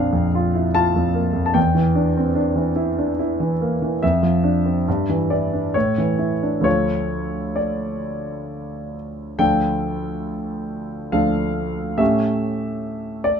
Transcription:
0.00 1.52 A#1 soft
0.00 0.13 F2 soft
0.00 1.58 C4 soft
0.00 1.58 D4 soft
0.00 0.75 F5 medium
0.13 0.46 F2 soft
0.35 0.67 F4 soft
0.55 0.76 E4 soft
0.75 1.08 F4 soft
0.75 1.44 A5 medium
0.96 1.28 F2 soft
1.15 1.48 A#3 soft
1.33 1.55 F2 soft
1.46 1.54 A5 soft
1.54 3.97 E2 soft
1.54 3.17 G5 medium
1.75 2.08 E3 soft
1.95 2.28 D4 soft
2.17 2.37 C4 soft
2.35 2.69 D4 soft
2.56 2.89 E3 soft
2.76 3.09 E4 soft
2.98 3.19 D4 soft
3.19 3.52 E4 soft
3.40 3.73 E3 soft
3.61 3.94 A#3 soft
3.82 4.03 E3 soft
4.03 4.85 F2 soft
4.03 5.30 E5 medium
4.23 4.57 F3 soft
4.44 4.78 D4 soft
4.65 4.87 C4 soft
4.88 5.73 G2 soft
5.09 5.44 E3 soft
5.30 5.66 E4 soft
5.30 5.75 D5 soft
5.53 5.75 D4 soft
5.74 6.63 A2 soft
5.74 6.63 C#5 soft
5.98 6.34 E3 soft
6.18 6.56 E4 soft
6.43 6.65 D4 soft
6.60 9.34 D2 soft
6.60 9.34 F3 soft
6.60 9.35 F4 soft
6.60 9.36 A4 soft
6.60 7.57 C#5 medium
7.56 8.94 D5 soft
9.39 11.10 D2 soft
9.39 11.10 F3 soft
9.39 11.10 D4 soft
9.39 11.10 A4 soft
9.39 11.14 G5 medium
11.12 11.96 D2 soft
11.12 11.97 F3 soft
11.12 11.97 D4 soft
11.12 11.97 A4 soft
11.12 11.99 F5 soft
11.97 13.40 A2 soft
11.97 13.40 A3 soft
11.97 13.40 C#4 soft
11.97 13.40 G4 soft
11.97 13.25 E5 medium
13.24 13.40 D5 medium

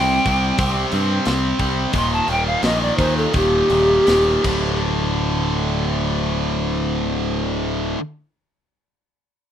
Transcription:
0.00 0.18 C2 medium
0.00 0.25 C3 medium
0.00 0.27 G3 medium
0.00 0.26 C4 medium
0.00 0.89 G5 loud
0.26 0.51 C2 medium
0.26 0.57 C3 medium
0.26 0.58 G3 medium
0.26 0.58 C4 medium
0.26 kick medium
0.26 open hi-hat medium
0.58 0.84 C2 medium
0.58 0.91 C3 medium
0.58 0.92 G3 medium
0.58 0.93 C4 loud
0.58 kick loud
0.58 open hi-hat medium
0.92 1.18 G2 medium
0.92 1.24 C3 medium
0.92 1.25 G3 medium
0.92 1.26 C4 medium
0.92 open hi-hat soft
1.25 1.52 C2 medium
1.25 1.58 C3 medium
1.25 1.58 G3 medium
1.25 1.59 C4 medium
1.25 snare medium
1.25 open hi-hat medium
1.59 1.85 C2 medium
1.59 1.91 C3 medium
1.59 1.91 G3 medium
1.59 1.92 C4 medium
1.59 kick medium
1.59 open hi-hat soft
1.93 2.20 D#1 medium
1.93 2.26 D#2 medium
1.93 2.26 A#2 medium
1.93 2.27 D#3 loud
1.93 2.11 C6 medium
1.93 kick loud
1.93 open hi-hat medium
2.13 2.32 A5 medium
2.27 2.55 D#1 medium
2.27 2.62 D#2 medium
2.27 2.62 A#2 medium
2.27 2.63 D#3 medium
2.27 2.45 G5 medium
2.27 open hi-hat soft
2.47 2.65 F5 medium
2.63 2.90 A#1 medium
2.63 2.98 D#2 medium
2.63 2.98 A#2 medium
2.63 2.99 D#3 medium
2.63 2.83 D#5 medium
2.63 snare loud
2.63 open hi-hat medium
2.82 2.97 D5 medium
2.97 3.25 D#2 medium
2.97 3.32 D#2 medium
2.97 3.33 A#2 medium
2.97 3.33 D#3 medium
2.97 3.18 C5 medium
2.97 kick medium
2.97 open hi-hat soft
3.17 3.38 A4 medium
3.33 3.62 D#1 medium
3.33 3.69 D#2 medium
3.33 3.69 A#2 loud
3.33 3.70 D#3 loud
3.33 4.80 G4 loud
3.33 kick medium
3.33 open hi-hat medium
3.70 3.98 D#1 medium
3.70 4.04 D#2 medium
3.70 4.05 A#2 medium
3.70 4.06 D#3 medium
3.70 open hi-hat soft
4.06 4.36 D#1 medium
4.06 4.42 D#2 medium
4.06 4.44 A#2 medium
4.06 4.45 D#3 medium
4.06 snare medium
4.06 open hi-hat medium
4.43 7.94 D1 medium
4.43 7.96 D2 medium
4.43 7.99 A2 medium
4.43 8.00 D3 medium
4.43 kick loud
4.43 crash medium

